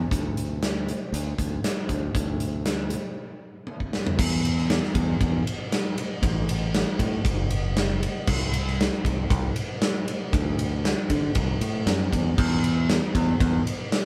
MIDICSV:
0, 0, Header, 1, 3, 480
1, 0, Start_track
1, 0, Tempo, 511073
1, 106, Time_signature, 4, 2, 24, 8
1, 13196, End_track
2, 0, Start_track
2, 0, Title_t, "Fingered electric bass"
2, 0, Program_c, 0, 33
2, 104, Note_on_c, 0, 38, 79
2, 856, Note_off_c, 0, 38, 0
2, 1057, Note_on_c, 0, 38, 101
2, 1246, Note_off_c, 0, 38, 0
2, 1300, Note_on_c, 0, 38, 69
2, 1487, Note_off_c, 0, 38, 0
2, 1778, Note_on_c, 0, 38, 84
2, 1965, Note_off_c, 0, 38, 0
2, 2019, Note_on_c, 0, 38, 85
2, 2771, Note_off_c, 0, 38, 0
2, 3928, Note_on_c, 0, 40, 92
2, 4496, Note_off_c, 0, 40, 0
2, 4645, Note_on_c, 0, 40, 91
2, 4836, Note_off_c, 0, 40, 0
2, 4895, Note_on_c, 0, 40, 91
2, 5081, Note_off_c, 0, 40, 0
2, 5844, Note_on_c, 0, 33, 98
2, 6414, Note_off_c, 0, 33, 0
2, 6566, Note_on_c, 0, 45, 86
2, 6757, Note_off_c, 0, 45, 0
2, 6808, Note_on_c, 0, 30, 93
2, 7567, Note_off_c, 0, 30, 0
2, 7774, Note_on_c, 0, 36, 92
2, 8343, Note_off_c, 0, 36, 0
2, 8497, Note_on_c, 0, 36, 93
2, 8686, Note_off_c, 0, 36, 0
2, 8732, Note_on_c, 0, 36, 89
2, 8924, Note_off_c, 0, 36, 0
2, 9699, Note_on_c, 0, 38, 97
2, 10269, Note_off_c, 0, 38, 0
2, 10421, Note_on_c, 0, 50, 78
2, 10612, Note_off_c, 0, 50, 0
2, 10668, Note_on_c, 0, 36, 97
2, 10856, Note_off_c, 0, 36, 0
2, 10900, Note_on_c, 0, 45, 74
2, 11119, Note_off_c, 0, 45, 0
2, 11141, Note_on_c, 0, 42, 87
2, 11360, Note_off_c, 0, 42, 0
2, 11387, Note_on_c, 0, 40, 77
2, 11603, Note_off_c, 0, 40, 0
2, 11625, Note_on_c, 0, 40, 97
2, 12194, Note_off_c, 0, 40, 0
2, 12347, Note_on_c, 0, 40, 100
2, 12537, Note_off_c, 0, 40, 0
2, 12587, Note_on_c, 0, 40, 104
2, 12777, Note_off_c, 0, 40, 0
2, 13196, End_track
3, 0, Start_track
3, 0, Title_t, "Drums"
3, 107, Note_on_c, 9, 36, 98
3, 116, Note_on_c, 9, 42, 80
3, 201, Note_off_c, 9, 36, 0
3, 210, Note_off_c, 9, 42, 0
3, 351, Note_on_c, 9, 42, 62
3, 444, Note_off_c, 9, 42, 0
3, 587, Note_on_c, 9, 42, 65
3, 588, Note_on_c, 9, 38, 98
3, 681, Note_off_c, 9, 42, 0
3, 682, Note_off_c, 9, 38, 0
3, 831, Note_on_c, 9, 42, 55
3, 925, Note_off_c, 9, 42, 0
3, 1070, Note_on_c, 9, 42, 76
3, 1164, Note_off_c, 9, 42, 0
3, 1301, Note_on_c, 9, 36, 69
3, 1307, Note_on_c, 9, 42, 58
3, 1394, Note_off_c, 9, 36, 0
3, 1401, Note_off_c, 9, 42, 0
3, 1543, Note_on_c, 9, 42, 72
3, 1544, Note_on_c, 9, 38, 90
3, 1637, Note_off_c, 9, 42, 0
3, 1638, Note_off_c, 9, 38, 0
3, 1776, Note_on_c, 9, 36, 71
3, 1777, Note_on_c, 9, 42, 57
3, 1870, Note_off_c, 9, 36, 0
3, 1871, Note_off_c, 9, 42, 0
3, 2017, Note_on_c, 9, 36, 97
3, 2021, Note_on_c, 9, 42, 78
3, 2110, Note_off_c, 9, 36, 0
3, 2115, Note_off_c, 9, 42, 0
3, 2256, Note_on_c, 9, 42, 60
3, 2350, Note_off_c, 9, 42, 0
3, 2495, Note_on_c, 9, 42, 73
3, 2496, Note_on_c, 9, 38, 100
3, 2589, Note_off_c, 9, 42, 0
3, 2590, Note_off_c, 9, 38, 0
3, 2727, Note_on_c, 9, 42, 63
3, 2821, Note_off_c, 9, 42, 0
3, 3446, Note_on_c, 9, 48, 48
3, 3539, Note_off_c, 9, 48, 0
3, 3571, Note_on_c, 9, 36, 53
3, 3665, Note_off_c, 9, 36, 0
3, 3694, Note_on_c, 9, 38, 79
3, 3788, Note_off_c, 9, 38, 0
3, 3818, Note_on_c, 9, 43, 84
3, 3912, Note_off_c, 9, 43, 0
3, 3933, Note_on_c, 9, 36, 122
3, 3937, Note_on_c, 9, 49, 121
3, 4027, Note_off_c, 9, 36, 0
3, 4031, Note_off_c, 9, 49, 0
3, 4179, Note_on_c, 9, 51, 66
3, 4273, Note_off_c, 9, 51, 0
3, 4302, Note_on_c, 9, 38, 30
3, 4396, Note_off_c, 9, 38, 0
3, 4414, Note_on_c, 9, 51, 84
3, 4415, Note_on_c, 9, 38, 100
3, 4508, Note_off_c, 9, 51, 0
3, 4509, Note_off_c, 9, 38, 0
3, 4540, Note_on_c, 9, 38, 31
3, 4634, Note_off_c, 9, 38, 0
3, 4649, Note_on_c, 9, 51, 74
3, 4650, Note_on_c, 9, 36, 84
3, 4742, Note_off_c, 9, 51, 0
3, 4744, Note_off_c, 9, 36, 0
3, 4890, Note_on_c, 9, 36, 100
3, 4893, Note_on_c, 9, 51, 86
3, 4984, Note_off_c, 9, 36, 0
3, 4987, Note_off_c, 9, 51, 0
3, 5140, Note_on_c, 9, 51, 70
3, 5234, Note_off_c, 9, 51, 0
3, 5375, Note_on_c, 9, 51, 96
3, 5376, Note_on_c, 9, 38, 93
3, 5469, Note_off_c, 9, 51, 0
3, 5470, Note_off_c, 9, 38, 0
3, 5614, Note_on_c, 9, 51, 76
3, 5708, Note_off_c, 9, 51, 0
3, 5849, Note_on_c, 9, 36, 106
3, 5853, Note_on_c, 9, 51, 108
3, 5943, Note_off_c, 9, 36, 0
3, 5946, Note_off_c, 9, 51, 0
3, 6095, Note_on_c, 9, 51, 87
3, 6189, Note_off_c, 9, 51, 0
3, 6334, Note_on_c, 9, 51, 96
3, 6335, Note_on_c, 9, 38, 100
3, 6428, Note_off_c, 9, 51, 0
3, 6429, Note_off_c, 9, 38, 0
3, 6569, Note_on_c, 9, 36, 73
3, 6571, Note_on_c, 9, 51, 76
3, 6663, Note_off_c, 9, 36, 0
3, 6665, Note_off_c, 9, 51, 0
3, 6807, Note_on_c, 9, 36, 107
3, 6814, Note_on_c, 9, 51, 106
3, 6901, Note_off_c, 9, 36, 0
3, 6908, Note_off_c, 9, 51, 0
3, 7049, Note_on_c, 9, 51, 74
3, 7143, Note_off_c, 9, 51, 0
3, 7294, Note_on_c, 9, 51, 92
3, 7295, Note_on_c, 9, 38, 99
3, 7388, Note_off_c, 9, 51, 0
3, 7389, Note_off_c, 9, 38, 0
3, 7540, Note_on_c, 9, 51, 73
3, 7634, Note_off_c, 9, 51, 0
3, 7772, Note_on_c, 9, 36, 118
3, 7773, Note_on_c, 9, 49, 101
3, 7866, Note_off_c, 9, 36, 0
3, 7866, Note_off_c, 9, 49, 0
3, 8017, Note_on_c, 9, 51, 77
3, 8111, Note_off_c, 9, 51, 0
3, 8148, Note_on_c, 9, 38, 34
3, 8242, Note_off_c, 9, 38, 0
3, 8271, Note_on_c, 9, 51, 87
3, 8272, Note_on_c, 9, 38, 104
3, 8365, Note_off_c, 9, 51, 0
3, 8366, Note_off_c, 9, 38, 0
3, 8498, Note_on_c, 9, 36, 83
3, 8508, Note_on_c, 9, 51, 74
3, 8592, Note_off_c, 9, 36, 0
3, 8602, Note_off_c, 9, 51, 0
3, 8739, Note_on_c, 9, 36, 108
3, 8745, Note_on_c, 9, 51, 94
3, 8833, Note_off_c, 9, 36, 0
3, 8839, Note_off_c, 9, 51, 0
3, 8978, Note_on_c, 9, 51, 72
3, 9072, Note_off_c, 9, 51, 0
3, 9219, Note_on_c, 9, 51, 82
3, 9220, Note_on_c, 9, 38, 112
3, 9313, Note_off_c, 9, 51, 0
3, 9314, Note_off_c, 9, 38, 0
3, 9465, Note_on_c, 9, 51, 76
3, 9559, Note_off_c, 9, 51, 0
3, 9703, Note_on_c, 9, 36, 110
3, 9710, Note_on_c, 9, 51, 98
3, 9797, Note_off_c, 9, 36, 0
3, 9804, Note_off_c, 9, 51, 0
3, 9945, Note_on_c, 9, 51, 70
3, 10039, Note_off_c, 9, 51, 0
3, 10192, Note_on_c, 9, 51, 92
3, 10193, Note_on_c, 9, 38, 98
3, 10286, Note_off_c, 9, 38, 0
3, 10286, Note_off_c, 9, 51, 0
3, 10423, Note_on_c, 9, 51, 75
3, 10425, Note_on_c, 9, 36, 72
3, 10517, Note_off_c, 9, 51, 0
3, 10519, Note_off_c, 9, 36, 0
3, 10658, Note_on_c, 9, 51, 97
3, 10665, Note_on_c, 9, 36, 111
3, 10752, Note_off_c, 9, 51, 0
3, 10759, Note_off_c, 9, 36, 0
3, 10907, Note_on_c, 9, 51, 74
3, 11001, Note_off_c, 9, 51, 0
3, 11147, Note_on_c, 9, 51, 102
3, 11148, Note_on_c, 9, 38, 102
3, 11241, Note_off_c, 9, 51, 0
3, 11242, Note_off_c, 9, 38, 0
3, 11388, Note_on_c, 9, 36, 72
3, 11393, Note_on_c, 9, 51, 76
3, 11482, Note_off_c, 9, 36, 0
3, 11487, Note_off_c, 9, 51, 0
3, 11629, Note_on_c, 9, 36, 115
3, 11632, Note_on_c, 9, 49, 105
3, 11723, Note_off_c, 9, 36, 0
3, 11726, Note_off_c, 9, 49, 0
3, 11870, Note_on_c, 9, 51, 71
3, 11964, Note_off_c, 9, 51, 0
3, 12111, Note_on_c, 9, 51, 87
3, 12112, Note_on_c, 9, 38, 105
3, 12205, Note_off_c, 9, 51, 0
3, 12206, Note_off_c, 9, 38, 0
3, 12349, Note_on_c, 9, 36, 81
3, 12351, Note_on_c, 9, 51, 75
3, 12443, Note_off_c, 9, 36, 0
3, 12445, Note_off_c, 9, 51, 0
3, 12590, Note_on_c, 9, 36, 111
3, 12591, Note_on_c, 9, 51, 95
3, 12684, Note_off_c, 9, 36, 0
3, 12685, Note_off_c, 9, 51, 0
3, 12838, Note_on_c, 9, 51, 74
3, 12932, Note_off_c, 9, 51, 0
3, 13076, Note_on_c, 9, 51, 82
3, 13077, Note_on_c, 9, 38, 100
3, 13170, Note_off_c, 9, 51, 0
3, 13171, Note_off_c, 9, 38, 0
3, 13196, End_track
0, 0, End_of_file